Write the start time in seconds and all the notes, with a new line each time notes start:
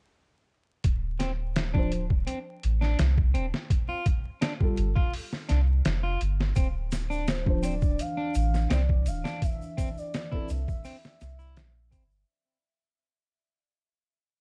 0.84 D1, kick, closed hi-hat
1.19 C4, snare, closed hi-hat
1.56 snare, closed hi-hat
1.74 F3 D4 C5, kick
1.92 closed hi-hat
2.10 kick
2.27 C4, closed hi-hat
2.63 A1, closed hi-hat
2.81 D4, snare
2.99 C2, snare, closed hi-hat
3.18 kick
3.34 D1 C4, closed hi-hat
3.54 snare
3.70 kick, closed hi-hat
3.89 F4
4.06 kick, closed hi-hat
4.41 D4, snare, closed hi-hat
4.60 G3 F4 A4, kick
4.77 G1, closed hi-hat
4.96 F4, kick
5.14 open hi-hat
5.33 snare
5.49 C2 D4, snare, closed hi-hat
5.85 F1, snare, closed hi-hat
6.03 F4
6.21 G1, closed hi-hat
6.40 snare
6.56 D1 E3 C4 D4, kick, closed hi-hat, shaker
6.92 snare, closed hi-hat, shaker
7.10 D4, shaker
7.28 C5, snare, closed hi-hat, shaker
7.45 F3 D4 C5, kick
7.63 C4 D5, closed hi-hat, shaker
7.82 kick, shaker
7.99 F5, closed hi-hat, shaker
8.17 D4
8.35 A1 F5, closed hi-hat, shaker
8.54 snare, shaker
8.70 C2 C4 D5, snare, closed hi-hat, shaker
8.89 kick
9.06 D1 F5, closed hi-hat, shaker
9.24 D4, snare, shaker
9.42 E5, kick, closed hi-hat, shaker
9.62 shaker
9.77 C4, kick, closed hi-hat, shaker
9.98 D5, shaker
10.14 snare, closed hi-hat, shaker
10.31 E3 C4 E4 A4, kick
10.49 C2 E5, closed hi-hat, shaker
10.68 kick, shaker
10.85 C4, open hi-hat, shaker
11.04 snare, shaker
11.21 C2, snare, closed hi-hat, shaker
11.39 E4, shaker
11.57 A#1, snare, closed hi-hat, shaker
11.91 G1 C4, kick, closed hi-hat, shaker
12.11 shaker